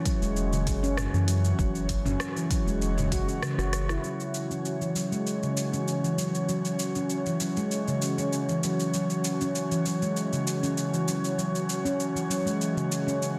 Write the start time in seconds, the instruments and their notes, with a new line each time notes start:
Already playing: analog synth pad E3 C#4 F#4 C#5
0.05 handpan F#3, kick, closed hi-hat, shaker
0.22 analog synth bass E1, handpan G#3, shaker
0.36 shaker
0.52 handpan C#3, shaker
0.67 analog synth bass F#1, kick, closed hi-hat, shaker
0.83 handpan C#4, shaker
0.97 cross-stick, mid tom, shaker
1.13 analog synth bass F#2, handpan E3, shaker
1.28 handpan F#3, closed hi-hat, shaker
1.45 shaker
1.59 analog synth bass F#1, handpan F#3, kick, shaker
1.75 shaker
1.89 kick, closed hi-hat, shaker
2.05 analog synth bass F#1, handpan C#4, mid tom, shaker
2.20 cross-stick, shaker
2.36 handpan E3, shaker
2.51 handpan F#3, kick, closed hi-hat, shaker
2.67 analog synth bass E1, handpan G#3, shaker
2.82 shaker
2.97 handpan C#3, mid tom, shaker
3.12 analog synth bass F#1, handpan F#4, kick, closed hi-hat, shaker
3.28 handpan F#4, shaker
3.42 handpan C#3, cross-stick, shaker
3.58 analog synth bass F#1, handpan F#4, cross-stick, shaker
3.73 cross-stick, closed hi-hat, shaker
3.89 handpan E4, cross-stick, shaker
4.04 handpan F#3, shaker
4.20 shaker
4.34 shaker
4.50 handpan C#4, shaker
4.65 shaker
4.81 handpan E3, shaker
4.95 handpan F#3, shaker
5.12 handpan G#3, shaker
5.27 shaker
5.43 handpan C#3, shaker
5.57 shaker
5.73 handpan C#4, shaker
5.88 shaker
6.04 handpan E3, shaker
6.18 handpan F#3, shaker
6.35 shaker
6.48 handpan F#3, shaker
6.65 shaker
6.79 shaker
6.95 handpan C#4, shaker
7.10 shaker
7.26 handpan E3, shaker
7.40 handpan F#3, shaker
7.57 handpan G#3, shaker
7.71 shaker
7.88 handpan C#3, shaker
8.02 shaker
8.18 handpan C#4, shaker
8.33 shaker
8.49 handpan E3, shaker
8.63 handpan F#3, shaker
8.80 shaker
8.94 handpan F#3, shaker
9.10 shaker
9.24 shaker
9.41 handpan C#4, shaker
9.55 shaker
9.71 handpan E3, shaker
9.86 handpan F#3, shaker
10.02 handpan G#3, shaker
10.17 shaker
10.33 handpan C#3, shaker
10.47 shaker
10.63 handpan C#4, shaker
10.78 shaker
10.93 handpan E3, shaker
11.08 handpan F#3, shaker
11.24 shaker
11.38 handpan F#3, shaker
11.55 shaker
11.69 shaker
11.85 handpan C#4, shaker
12.00 shaker
12.15 handpan E3, shaker
12.30 handpan F#3, shaker
12.46 handpan G#3, shaker
12.61 shaker
12.76 handpan C#3, shaker
12.92 shaker
13.07 handpan C#4, shaker
13.22 shaker